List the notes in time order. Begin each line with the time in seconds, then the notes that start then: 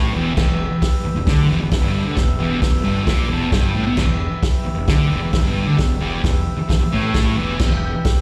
Already playing: A1 A2 G4 B4 E5
0.13 E1 E2
0.35 E1 E2 G4 B4 E5, kick, snare, crash
0.47 E1 E2
0.82 kick, snare, open hi-hat
1.04 muted fingered electric bass stroke, muted distorted electric guitar stroke
1.15 E1 E2
1.27 D2 D3, kick, snare, open hi-hat
1.48 E1 E2
1.59 E1 E2
1.71 E1 E2, kick, snare, open hi-hat
1.81 G1 G2
2.05 D2 D3
2.16 E1 E2, kick, snare, open hi-hat
2.39 E1 E2
2.62 E1 E2, kick, snare, open hi-hat
2.83 G1 G2
3.06 A#1 A#2, kick, snare, open hi-hat
3.29 E1 E2 A5
3.52 G1 G2 G5, kick, snare, open hi-hat
3.74 A1 A2
3.86 B1 B2
3.96 E1 E2 G4 B4 E5, kick, snare, crash
4.07 E1 E2
4.43 kick, snare, open hi-hat
4.65 muted distorted electric guitar stroke, muted fingered electric bass stroke
4.76 E1 E2
4.88 D2 D3, kick, snare, open hi-hat
5.10 E1 E2
5.21 E1 E2
5.33 E1 E2, kick, snare, open hi-hat
5.44 G1 G2
5.66 D2 D3
5.77 E1 E2, kick, snare, open hi-hat
6.00 E1 E2
6.23 E1 E2, kick, snare, open hi-hat
6.57 muted distorted electric guitar stroke, muted fingered electric bass stroke
6.69 muted distorted electric guitar stroke, muted fingered electric bass stroke, kick, snare, open hi-hat
6.81 muted distorted electric guitar stroke, muted fingered electric bass stroke
6.92 A1 A2
7.14 kick, snare, open hi-hat
7.36 E1 E2
7.60 E1 E2 G4 B4 E5, kick, snare, crash
7.71 E1 E2
8.05 kick, snare, open hi-hat